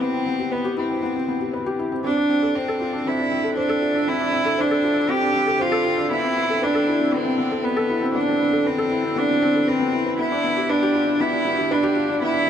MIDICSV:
0, 0, Header, 1, 3, 480
1, 0, Start_track
1, 0, Tempo, 508475
1, 16, Time_signature, 4, 2, 24, 8
1, 11798, End_track
2, 0, Start_track
2, 0, Title_t, "Cello"
2, 0, Program_c, 0, 42
2, 7, Note_on_c, 0, 60, 89
2, 482, Note_on_c, 0, 59, 80
2, 496, Note_off_c, 0, 60, 0
2, 727, Note_off_c, 0, 59, 0
2, 733, Note_on_c, 0, 60, 73
2, 1657, Note_off_c, 0, 60, 0
2, 1930, Note_on_c, 0, 62, 99
2, 2410, Note_on_c, 0, 60, 88
2, 2424, Note_off_c, 0, 62, 0
2, 2899, Note_on_c, 0, 64, 94
2, 2913, Note_off_c, 0, 60, 0
2, 3359, Note_off_c, 0, 64, 0
2, 3364, Note_on_c, 0, 62, 93
2, 3851, Note_on_c, 0, 64, 102
2, 3866, Note_off_c, 0, 62, 0
2, 4343, Note_on_c, 0, 62, 98
2, 4357, Note_off_c, 0, 64, 0
2, 4814, Note_on_c, 0, 67, 108
2, 4829, Note_off_c, 0, 62, 0
2, 5296, Note_on_c, 0, 65, 107
2, 5310, Note_off_c, 0, 67, 0
2, 5776, Note_off_c, 0, 65, 0
2, 5783, Note_on_c, 0, 64, 107
2, 6261, Note_on_c, 0, 62, 96
2, 6275, Note_off_c, 0, 64, 0
2, 6740, Note_on_c, 0, 60, 95
2, 6754, Note_off_c, 0, 62, 0
2, 7215, Note_on_c, 0, 59, 93
2, 7229, Note_off_c, 0, 60, 0
2, 7681, Note_off_c, 0, 59, 0
2, 7687, Note_on_c, 0, 62, 96
2, 8177, Note_on_c, 0, 60, 95
2, 8192, Note_off_c, 0, 62, 0
2, 8661, Note_on_c, 0, 62, 102
2, 8675, Note_off_c, 0, 60, 0
2, 9132, Note_on_c, 0, 60, 96
2, 9146, Note_off_c, 0, 62, 0
2, 9614, Note_off_c, 0, 60, 0
2, 9621, Note_on_c, 0, 64, 101
2, 10096, Note_on_c, 0, 62, 96
2, 10110, Note_off_c, 0, 64, 0
2, 10575, Note_on_c, 0, 64, 102
2, 10589, Note_off_c, 0, 62, 0
2, 11057, Note_on_c, 0, 62, 95
2, 11071, Note_off_c, 0, 64, 0
2, 11537, Note_off_c, 0, 62, 0
2, 11542, Note_on_c, 0, 64, 104
2, 11798, Note_off_c, 0, 64, 0
2, 11798, End_track
3, 0, Start_track
3, 0, Title_t, "Felt piano"
3, 0, Program_c, 1, 0
3, 0, Control_c, 1, 64, 127
3, 0, Note_on_c, 1, 59, 64
3, 0, Note_on_c, 1, 60, 65
3, 0, Note_on_c, 1, 64, 64
3, 0, Note_on_c, 1, 67, 88
3, 0, Note_on_c, 1, 71, 67
3, 12, Note_off_c, 1, 59, 0
3, 12, Note_on_c, 1, 59, 71
3, 128, Note_off_c, 1, 59, 0
3, 131, Note_off_c, 1, 60, 0
3, 131, Note_on_c, 1, 60, 61
3, 248, Note_off_c, 1, 60, 0
3, 250, Note_on_c, 1, 59, 63
3, 321, Note_off_c, 1, 59, 0
3, 371, Note_off_c, 1, 67, 0
3, 371, Note_on_c, 1, 67, 56
3, 487, Note_off_c, 1, 71, 0
3, 487, Note_on_c, 1, 71, 68
3, 488, Note_off_c, 1, 67, 0
3, 560, Note_off_c, 1, 71, 0
3, 608, Note_on_c, 1, 67, 86
3, 680, Note_off_c, 1, 67, 0
3, 730, Note_off_c, 1, 64, 0
3, 730, Note_on_c, 1, 64, 61
3, 847, Note_off_c, 1, 64, 0
3, 849, Note_on_c, 1, 60, 66
3, 967, Note_off_c, 1, 60, 0
3, 971, Note_on_c, 1, 59, 68
3, 1087, Note_off_c, 1, 59, 0
3, 1093, Note_on_c, 1, 60, 61
3, 1208, Note_off_c, 1, 60, 0
3, 1212, Note_on_c, 1, 59, 66
3, 1282, Note_off_c, 1, 59, 0
3, 1329, Note_on_c, 1, 67, 60
3, 1446, Note_off_c, 1, 67, 0
3, 1449, Note_on_c, 1, 71, 67
3, 1521, Note_off_c, 1, 71, 0
3, 1570, Note_on_c, 1, 67, 88
3, 1642, Note_off_c, 1, 67, 0
3, 1691, Note_on_c, 1, 64, 62
3, 1808, Note_off_c, 1, 64, 0
3, 1810, Note_on_c, 1, 60, 66
3, 1914, Note_off_c, 1, 60, 0
3, 1928, Note_on_c, 1, 60, 77
3, 1949, Control_c, 1, 64, 0
3, 2046, Note_off_c, 1, 60, 0
3, 2048, Note_on_c, 1, 62, 72
3, 2124, Control_c, 1, 64, 127
3, 2166, Note_off_c, 1, 62, 0
3, 2167, Note_on_c, 1, 60, 66
3, 2240, Note_off_c, 1, 60, 0
3, 2288, Note_on_c, 1, 69, 61
3, 2406, Note_off_c, 1, 69, 0
3, 2410, Note_on_c, 1, 72, 67
3, 2482, Note_off_c, 1, 72, 0
3, 2533, Note_on_c, 1, 69, 82
3, 2603, Note_off_c, 1, 69, 0
3, 2649, Note_on_c, 1, 65, 62
3, 2766, Note_on_c, 1, 62, 67
3, 2767, Note_off_c, 1, 65, 0
3, 2885, Note_off_c, 1, 62, 0
3, 2886, Note_on_c, 1, 60, 72
3, 3005, Note_off_c, 1, 60, 0
3, 3008, Note_on_c, 1, 62, 63
3, 3126, Note_off_c, 1, 62, 0
3, 3128, Note_on_c, 1, 60, 65
3, 3200, Note_off_c, 1, 60, 0
3, 3248, Note_on_c, 1, 69, 63
3, 3366, Note_off_c, 1, 69, 0
3, 3368, Note_on_c, 1, 72, 69
3, 3441, Note_off_c, 1, 72, 0
3, 3485, Note_on_c, 1, 69, 88
3, 3559, Note_off_c, 1, 69, 0
3, 3603, Note_on_c, 1, 65, 62
3, 3724, Note_off_c, 1, 65, 0
3, 3727, Note_on_c, 1, 62, 72
3, 3846, Note_off_c, 1, 62, 0
3, 3846, Note_on_c, 1, 60, 70
3, 3965, Note_off_c, 1, 60, 0
3, 3968, Note_on_c, 1, 62, 66
3, 4084, Note_on_c, 1, 60, 64
3, 4086, Note_off_c, 1, 62, 0
3, 4159, Note_off_c, 1, 60, 0
3, 4202, Note_on_c, 1, 69, 63
3, 4323, Note_off_c, 1, 69, 0
3, 4324, Note_on_c, 1, 72, 72
3, 4398, Note_off_c, 1, 72, 0
3, 4446, Note_on_c, 1, 69, 91
3, 4519, Note_off_c, 1, 69, 0
3, 4564, Note_on_c, 1, 65, 69
3, 4684, Note_off_c, 1, 65, 0
3, 4684, Note_on_c, 1, 62, 71
3, 4801, Note_on_c, 1, 60, 76
3, 4804, Note_off_c, 1, 62, 0
3, 4922, Note_on_c, 1, 62, 65
3, 4923, Note_off_c, 1, 60, 0
3, 5039, Note_on_c, 1, 60, 69
3, 5043, Note_off_c, 1, 62, 0
3, 5116, Note_off_c, 1, 60, 0
3, 5163, Note_on_c, 1, 69, 68
3, 5281, Note_on_c, 1, 72, 70
3, 5284, Note_off_c, 1, 69, 0
3, 5357, Note_off_c, 1, 72, 0
3, 5399, Note_on_c, 1, 69, 98
3, 5476, Note_off_c, 1, 69, 0
3, 5522, Note_on_c, 1, 65, 64
3, 5643, Note_off_c, 1, 65, 0
3, 5643, Note_on_c, 1, 62, 72
3, 5764, Note_off_c, 1, 62, 0
3, 5767, Note_on_c, 1, 59, 72
3, 5787, Control_c, 1, 64, 0
3, 5886, Note_off_c, 1, 59, 0
3, 5888, Note_on_c, 1, 60, 73
3, 5942, Control_c, 1, 64, 127
3, 6006, Note_off_c, 1, 60, 0
3, 6011, Note_on_c, 1, 59, 70
3, 6082, Note_off_c, 1, 59, 0
3, 6135, Note_on_c, 1, 69, 65
3, 6250, Note_off_c, 1, 69, 0
3, 6252, Note_on_c, 1, 71, 75
3, 6322, Note_off_c, 1, 71, 0
3, 6369, Note_on_c, 1, 69, 93
3, 6441, Note_off_c, 1, 69, 0
3, 6490, Note_on_c, 1, 64, 67
3, 6607, Note_off_c, 1, 64, 0
3, 6609, Note_on_c, 1, 60, 68
3, 6724, Note_on_c, 1, 59, 78
3, 6726, Note_off_c, 1, 60, 0
3, 6843, Note_on_c, 1, 60, 69
3, 6844, Note_off_c, 1, 59, 0
3, 6964, Note_off_c, 1, 60, 0
3, 6969, Note_on_c, 1, 59, 68
3, 7041, Note_off_c, 1, 59, 0
3, 7092, Note_on_c, 1, 69, 64
3, 7208, Note_off_c, 1, 69, 0
3, 7208, Note_on_c, 1, 71, 68
3, 7280, Note_off_c, 1, 71, 0
3, 7330, Note_on_c, 1, 69, 92
3, 7401, Note_off_c, 1, 69, 0
3, 7450, Note_on_c, 1, 64, 66
3, 7567, Note_off_c, 1, 64, 0
3, 7571, Note_on_c, 1, 60, 74
3, 7688, Note_off_c, 1, 60, 0
3, 7693, Note_on_c, 1, 59, 78
3, 7808, Note_off_c, 1, 59, 0
3, 7808, Note_on_c, 1, 60, 75
3, 7926, Note_off_c, 1, 60, 0
3, 7932, Note_on_c, 1, 59, 67
3, 8003, Note_off_c, 1, 59, 0
3, 8050, Note_on_c, 1, 69, 66
3, 8167, Note_off_c, 1, 69, 0
3, 8172, Note_on_c, 1, 71, 70
3, 8243, Note_off_c, 1, 71, 0
3, 8291, Note_on_c, 1, 69, 89
3, 8362, Note_off_c, 1, 69, 0
3, 8415, Note_on_c, 1, 64, 67
3, 8529, Note_off_c, 1, 64, 0
3, 8531, Note_on_c, 1, 60, 73
3, 8648, Note_off_c, 1, 60, 0
3, 8649, Note_on_c, 1, 59, 79
3, 8767, Note_off_c, 1, 59, 0
3, 8770, Note_on_c, 1, 60, 69
3, 8881, Note_off_c, 1, 60, 0
3, 8895, Note_on_c, 1, 60, 95
3, 9010, Note_off_c, 1, 60, 0
3, 9019, Note_on_c, 1, 69, 68
3, 9132, Note_off_c, 1, 69, 0
3, 9135, Note_on_c, 1, 71, 68
3, 9204, Note_off_c, 1, 71, 0
3, 9256, Note_on_c, 1, 59, 75
3, 9370, Note_off_c, 1, 59, 0
3, 9372, Note_on_c, 1, 64, 67
3, 9488, Note_off_c, 1, 64, 0
3, 9499, Note_on_c, 1, 71, 74
3, 9566, Note_off_c, 1, 71, 0
3, 9618, Note_on_c, 1, 59, 80
3, 9628, Control_c, 1, 64, 0
3, 9731, Note_off_c, 1, 59, 0
3, 9740, Note_on_c, 1, 62, 76
3, 9802, Control_c, 1, 64, 127
3, 9852, Note_off_c, 1, 62, 0
3, 9857, Note_on_c, 1, 59, 69
3, 9971, Note_off_c, 1, 59, 0
3, 9976, Note_on_c, 1, 67, 66
3, 10090, Note_off_c, 1, 67, 0
3, 10095, Note_on_c, 1, 71, 72
3, 10164, Note_off_c, 1, 71, 0
3, 10219, Note_on_c, 1, 67, 99
3, 10286, Note_off_c, 1, 67, 0
3, 10334, Note_on_c, 1, 65, 70
3, 10449, Note_off_c, 1, 65, 0
3, 10453, Note_on_c, 1, 62, 71
3, 10568, Note_off_c, 1, 62, 0
3, 10578, Note_on_c, 1, 59, 83
3, 10691, Note_off_c, 1, 59, 0
3, 10695, Note_on_c, 1, 62, 69
3, 10810, Note_off_c, 1, 62, 0
3, 10811, Note_on_c, 1, 59, 72
3, 10928, Note_off_c, 1, 59, 0
3, 10934, Note_on_c, 1, 67, 66
3, 11049, Note_off_c, 1, 67, 0
3, 11053, Note_on_c, 1, 71, 79
3, 11123, Note_off_c, 1, 71, 0
3, 11171, Note_on_c, 1, 67, 99
3, 11242, Note_off_c, 1, 67, 0
3, 11292, Note_on_c, 1, 65, 72
3, 11408, Note_off_c, 1, 65, 0
3, 11413, Note_on_c, 1, 62, 75
3, 11529, Note_off_c, 1, 62, 0
3, 11531, Note_on_c, 1, 59, 77
3, 11648, Note_off_c, 1, 59, 0
3, 11649, Note_on_c, 1, 62, 77
3, 11766, Note_off_c, 1, 62, 0
3, 11769, Note_on_c, 1, 59, 72
3, 11798, Note_off_c, 1, 59, 0
3, 11798, End_track
0, 0, End_of_file